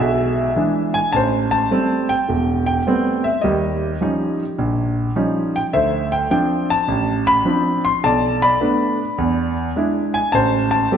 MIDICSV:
0, 0, Header, 1, 2, 480
1, 0, Start_track
1, 0, Tempo, 574163
1, 952, Time_signature, 4, 2, 24, 8
1, 9171, End_track
2, 0, Start_track
2, 0, Title_t, "Grand piano"
2, 0, Program_c, 0, 0
2, 0, Note_on_c, 0, 35, 70
2, 0, Note_on_c, 0, 47, 73
2, 0, Note_on_c, 0, 68, 64
2, 0, Note_on_c, 0, 76, 97
2, 410, Note_off_c, 0, 35, 0
2, 411, Note_off_c, 0, 47, 0
2, 470, Note_on_c, 0, 52, 53
2, 477, Note_on_c, 0, 56, 50
2, 477, Note_on_c, 0, 62, 57
2, 756, Note_off_c, 0, 76, 0
2, 774, Note_off_c, 0, 68, 0
2, 787, Note_on_c, 0, 80, 89
2, 813, Note_off_c, 0, 52, 0
2, 816, Note_off_c, 0, 56, 0
2, 817, Note_off_c, 0, 62, 0
2, 940, Note_on_c, 0, 81, 94
2, 950, Note_off_c, 0, 80, 0
2, 954, Note_on_c, 0, 33, 69
2, 971, Note_on_c, 0, 72, 67
2, 1015, Note_off_c, 0, 81, 0
2, 1264, Note_on_c, 0, 81, 91
2, 1370, Note_off_c, 0, 33, 0
2, 1429, Note_on_c, 0, 57, 48
2, 1431, Note_on_c, 0, 55, 52
2, 1436, Note_on_c, 0, 60, 59
2, 1717, Note_off_c, 0, 81, 0
2, 1750, Note_on_c, 0, 79, 88
2, 1772, Note_off_c, 0, 57, 0
2, 1773, Note_off_c, 0, 55, 0
2, 1775, Note_off_c, 0, 60, 0
2, 1886, Note_off_c, 0, 72, 0
2, 1912, Note_on_c, 0, 28, 74
2, 2215, Note_off_c, 0, 79, 0
2, 2228, Note_on_c, 0, 79, 84
2, 2329, Note_off_c, 0, 28, 0
2, 2397, Note_on_c, 0, 55, 51
2, 2398, Note_on_c, 0, 57, 47
2, 2400, Note_on_c, 0, 59, 46
2, 2405, Note_on_c, 0, 60, 63
2, 2709, Note_on_c, 0, 76, 76
2, 2726, Note_off_c, 0, 79, 0
2, 2735, Note_off_c, 0, 55, 0
2, 2736, Note_off_c, 0, 57, 0
2, 2737, Note_off_c, 0, 59, 0
2, 2739, Note_off_c, 0, 60, 0
2, 2854, Note_off_c, 0, 76, 0
2, 2854, Note_on_c, 0, 75, 72
2, 2873, Note_on_c, 0, 55, 62
2, 2876, Note_on_c, 0, 39, 61
2, 2876, Note_on_c, 0, 67, 51
2, 3289, Note_off_c, 0, 55, 0
2, 3290, Note_off_c, 0, 39, 0
2, 3351, Note_on_c, 0, 53, 52
2, 3356, Note_on_c, 0, 55, 47
2, 3358, Note_on_c, 0, 61, 47
2, 3363, Note_on_c, 0, 63, 59
2, 3634, Note_off_c, 0, 75, 0
2, 3692, Note_off_c, 0, 53, 0
2, 3694, Note_off_c, 0, 55, 0
2, 3695, Note_off_c, 0, 61, 0
2, 3698, Note_off_c, 0, 63, 0
2, 3798, Note_off_c, 0, 67, 0
2, 3834, Note_on_c, 0, 34, 70
2, 4249, Note_off_c, 0, 34, 0
2, 4312, Note_on_c, 0, 55, 46
2, 4313, Note_on_c, 0, 53, 55
2, 4316, Note_on_c, 0, 61, 50
2, 4317, Note_on_c, 0, 63, 59
2, 4646, Note_on_c, 0, 79, 77
2, 4652, Note_off_c, 0, 55, 0
2, 4653, Note_off_c, 0, 53, 0
2, 4654, Note_off_c, 0, 61, 0
2, 4655, Note_off_c, 0, 63, 0
2, 4688, Note_off_c, 0, 79, 0
2, 4793, Note_on_c, 0, 76, 82
2, 4796, Note_on_c, 0, 38, 62
2, 4799, Note_on_c, 0, 72, 55
2, 5117, Note_on_c, 0, 79, 78
2, 5128, Note_off_c, 0, 76, 0
2, 5210, Note_off_c, 0, 38, 0
2, 5258, Note_off_c, 0, 79, 0
2, 5271, Note_on_c, 0, 60, 45
2, 5274, Note_on_c, 0, 53, 53
2, 5276, Note_on_c, 0, 62, 57
2, 5278, Note_on_c, 0, 79, 78
2, 5604, Note_on_c, 0, 81, 100
2, 5610, Note_off_c, 0, 79, 0
2, 5612, Note_off_c, 0, 60, 0
2, 5613, Note_off_c, 0, 53, 0
2, 5615, Note_off_c, 0, 62, 0
2, 5720, Note_off_c, 0, 72, 0
2, 5751, Note_on_c, 0, 33, 71
2, 6078, Note_on_c, 0, 83, 113
2, 6094, Note_off_c, 0, 81, 0
2, 6168, Note_off_c, 0, 33, 0
2, 6228, Note_on_c, 0, 53, 56
2, 6232, Note_on_c, 0, 62, 58
2, 6235, Note_on_c, 0, 60, 47
2, 6524, Note_off_c, 0, 83, 0
2, 6559, Note_on_c, 0, 84, 93
2, 6571, Note_off_c, 0, 53, 0
2, 6573, Note_off_c, 0, 62, 0
2, 6574, Note_off_c, 0, 60, 0
2, 6715, Note_off_c, 0, 84, 0
2, 6718, Note_on_c, 0, 35, 67
2, 6721, Note_on_c, 0, 81, 95
2, 6736, Note_on_c, 0, 74, 66
2, 7042, Note_on_c, 0, 83, 101
2, 7043, Note_off_c, 0, 74, 0
2, 7052, Note_off_c, 0, 81, 0
2, 7056, Note_on_c, 0, 74, 63
2, 7133, Note_off_c, 0, 35, 0
2, 7195, Note_on_c, 0, 57, 56
2, 7199, Note_on_c, 0, 59, 49
2, 7202, Note_on_c, 0, 62, 58
2, 7536, Note_off_c, 0, 57, 0
2, 7538, Note_off_c, 0, 59, 0
2, 7539, Note_off_c, 0, 62, 0
2, 7677, Note_on_c, 0, 40, 74
2, 7968, Note_off_c, 0, 83, 0
2, 7974, Note_off_c, 0, 74, 0
2, 8093, Note_off_c, 0, 40, 0
2, 8161, Note_on_c, 0, 56, 55
2, 8166, Note_on_c, 0, 62, 50
2, 8168, Note_on_c, 0, 64, 63
2, 8478, Note_on_c, 0, 80, 89
2, 8500, Note_off_c, 0, 56, 0
2, 8502, Note_off_c, 0, 62, 0
2, 8503, Note_off_c, 0, 64, 0
2, 8630, Note_on_c, 0, 81, 101
2, 8636, Note_off_c, 0, 80, 0
2, 8644, Note_on_c, 0, 33, 68
2, 8651, Note_on_c, 0, 72, 74
2, 8941, Note_off_c, 0, 81, 0
2, 8953, Note_on_c, 0, 81, 100
2, 9058, Note_off_c, 0, 33, 0
2, 9126, Note_on_c, 0, 57, 55
2, 9130, Note_on_c, 0, 55, 50
2, 9131, Note_on_c, 0, 60, 49
2, 9135, Note_on_c, 0, 67, 61
2, 9171, Note_off_c, 0, 55, 0
2, 9171, Note_off_c, 0, 57, 0
2, 9171, Note_off_c, 0, 60, 0
2, 9171, Note_off_c, 0, 67, 0
2, 9171, Note_off_c, 0, 72, 0
2, 9171, Note_off_c, 0, 81, 0
2, 9171, End_track
0, 0, End_of_file